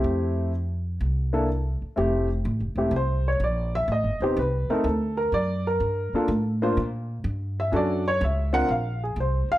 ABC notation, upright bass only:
X:1
M:4/4
L:1/8
Q:"Swing" 1/4=125
K:F
V:1 name="Upright bass" clef=bass
F,,4 C,,3 z | F,,,2 (3A,,, F,,, E,,, C,,2 B,,,2 | (3A,,, G,,, _E,,, C,, z D,,2 ^F,,2 | G,, z A,,2 B,,2 G,,2 |
_G,,2 _D,,2 B,,,2 C,, z |]